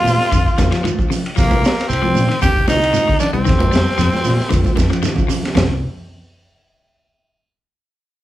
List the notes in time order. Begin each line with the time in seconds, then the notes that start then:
Already playing: F4
0.04 A#2, snare, open hi-hat, high conga, low conga, shekere
0.17 muted fingered electric bass stroke, snare, shekere
0.32 F2 D3, kick, ride bell, high conga, shekere
0.46 kick, shekere
0.58 F2 D#3, kick, snare, ride bell, high conga, shekere
0.71 F3, snare, ride bell, shekere
0.84 D#3, ride bell, high conga, shekere
0.99 F3, kick, shekere
1.10 C3, open hi-hat, low conga, shekere
1.25 ride bell, shekere
1.36 C2 F3 A#3, kick, snare, ride bell, high conga, shekere
1.51 kick, high conga, shekere
1.62 muted clean electric guitar stroke, ride bell, shekere
1.66 snare
1.78 snare, ride bell, shekere
1.88 C2 C4, high conga, shekere
1.93 ride bell
2.02 F3, high conga, shekere
2.15 A#2, open hi-hat, high conga, low conga, shekere
2.29 D#3, ride bell, shekere
2.41 D#2 C3 G4, kick, snare, ride bell, high conga, low conga, shekere
2.56 kick, shekere
2.67 C2 D3 D#4, snare, ride bell, high conga, shekere
2.82 ride bell, shekere
2.93 C3, ride bell, high conga, shekere
3.08 D3, kick, shekere
3.20 D#3 D4, ride bell, low conga, shekere
3.33 C2 G3 C4, shekere
3.45 F2 D#3, kick, ride bell, high conga, shekere
3.50 snare
3.59 F3, kick, high conga, shekere
3.71 F2 G3, ride bell, shekere
3.76 snare
3.86 snare, shekere
3.98 F2 F3, snare, ride bell, high conga, shekere
4.12 muted fingered electric bass stroke, snare, high conga, shekere
4.24 A#2, snare, open hi-hat, high conga, low conga, shekere
4.39 muted fingered electric bass stroke, snare, shekere
4.49 F2 D3, kick, high conga, shekere
4.53 ride bell
4.64 kick, high conga, shekere
4.76 F2 D#3, kick, ride bell, low conga, shekere
4.80 snare
4.90 F3, ride bell, low conga, shekere
5.03 D#3, snare, ride bell, low conga, shekere
5.16 F3, kick, low conga, shekere
5.28 C3, open hi-hat, low conga, shekere
5.43 snare, ride bell, low conga, shekere
5.55 C2 C3, snare, floor tom, ride bell, low conga, shekere